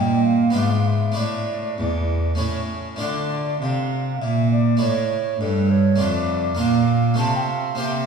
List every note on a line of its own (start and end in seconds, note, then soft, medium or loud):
0.00 0.51 A#2 soft
0.00 0.55 A#2 medium
0.00 0.49 A#3 soft
0.00 0.50 D#4 soft
0.00 0.51 G4 soft
0.00 0.25 G5 medium
0.25 0.57 F5 medium
0.50 1.12 B3 soft
0.50 1.12 D4 soft
0.50 1.14 F4 soft
0.55 1.13 G#2 soft
0.55 1.16 G#2 medium
0.55 0.65 E5 medium
0.63 0.72 F5 medium
0.71 0.81 E5 medium
0.79 0.89 F5 medium
0.87 1.18 E5 medium
1.12 2.33 A3 soft
1.12 2.34 D4 soft
1.12 2.35 E4 soft
1.17 1.74 A2 soft
1.17 1.80 A2 medium
1.17 2.40 D5 medium
1.78 2.36 E2 soft
1.78 2.39 E2 soft
2.35 2.95 A3 soft
2.35 2.98 C#4 soft
2.35 2.98 E4 soft
2.39 3.00 A2 medium
2.39 2.97 A2 soft
2.96 3.58 A3 soft
2.96 4.77 D4 soft
2.96 4.77 F4 soft
3.01 3.58 D3 medium
3.01 3.58 D3 soft
3.01 3.58 D5 medium
3.62 4.21 C3 medium
3.62 4.18 C3 soft
3.62 4.23 F5 medium
4.22 4.78 A#2 soft
4.22 4.81 A#2 medium
4.22 4.51 E5 medium
4.52 4.80 D5 medium
4.77 5.95 A3 soft
4.77 5.95 E4 soft
4.81 5.37 A2 soft
4.81 5.40 A2 medium
4.81 5.40 C#5 medium
5.41 5.96 G2 soft
5.41 5.99 G2 medium
5.41 5.72 A4 medium
5.70 6.02 C#5 medium
5.96 6.56 A3 soft
5.96 6.55 D4 soft
5.96 6.57 F4 soft
6.00 6.56 F2 medium
6.00 6.59 F2 medium
6.00 6.59 D5 medium
6.55 7.15 A#3 soft
6.55 7.16 D4 soft
6.55 7.16 F4 soft
6.59 7.15 A#2 soft
6.59 7.18 A#2 medium
6.59 7.18 F5 medium
7.14 7.76 A3 soft
7.14 7.75 C4 soft
7.14 7.77 F4 soft
7.19 7.76 C3 soft
7.19 7.79 C3 medium
7.19 7.34 A5 medium
7.36 7.42 G5 medium
7.50 7.80 F5 medium
7.75 8.06 A#3 soft
7.75 8.06 C4 soft
7.75 8.06 G4 soft
7.79 8.06 C3 soft
7.79 8.06 C3 medium
7.79 8.06 E5 medium